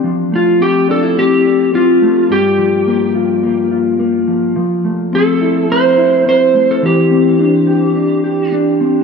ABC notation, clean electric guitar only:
X:1
M:4/4
L:1/16
Q:1/4=106
K:F
V:1 name="Clean electric guitar"
F,2 A,2 C2 D E C4 C2 A,2 | G,,2 F,2 B,2 F2 B,2 F2 B,2 F,2 | F,2 A,2 C2 E2 C2 E2 C2 A,2 | E,2 C2 D2 G2 D2 G2 D2 C2 |]